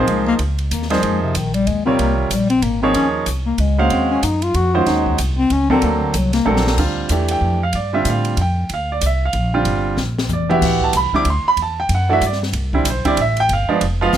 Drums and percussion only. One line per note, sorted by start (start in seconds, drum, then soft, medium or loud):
0.07 ride medium
0.39 ride medium
0.58 ride soft
0.71 hi-hat pedal medium
0.71 ride medium
0.82 snare soft
0.90 snare soft
0.90 ride soft
1.03 ride medium
1.35 hi-hat pedal medium
1.35 ride medium
1.54 ride soft
1.67 ride medium
1.99 ride medium
2.31 hi-hat pedal medium
2.31 ride medium
2.50 ride soft
2.62 ride medium
2.94 ride medium
3.26 hi-hat pedal medium
3.26 ride medium
3.58 ride medium
3.90 ride medium
4.23 hi-hat pedal medium
4.23 ride medium
4.42 ride soft
4.54 ride medium
4.86 snare soft
4.86 ride medium
5.06 kick medium
5.18 hi-hat pedal medium
5.18 ride medium
5.50 ride medium
5.70 kick medium
5.82 ride medium
6.14 hi-hat pedal medium
6.14 ride medium
6.33 snare soft
6.33 ride medium
6.57 snare medium
6.67 snare medium
6.78 kick medium
6.78 crash medium
7.09 hi-hat pedal medium
7.09 ride medium
7.28 ride medium
7.73 ride medium
8.05 hi-hat pedal medium
8.05 ride medium
8.25 ride soft
8.37 ride medium
8.69 ride medium
9.01 hi-hat pedal medium
9.01 ride medium
9.33 ride medium
9.65 ride medium
9.97 snare medium
10.18 snare medium
10.29 hi-hat pedal medium
10.29 mid tom medium
10.51 mid tom medium
10.62 kick medium
10.62 snare soft
10.62 crash medium
10.81 kick medium
10.93 hi-hat pedal medium
10.93 ride medium
11.13 kick soft
11.25 ride medium
11.57 ride medium
11.89 ride medium
12.21 hi-hat pedal medium
12.21 ride medium
12.32 snare soft
12.43 snare soft
12.53 ride medium
12.73 kick medium
12.85 hi-hat pedal medium
12.85 ride medium
13.05 kick medium
13.05 ride soft
13.17 ride medium
13.37 ride soft
13.49 ride medium
13.81 ride medium
14.13 snare medium
14.13 hi-hat pedal medium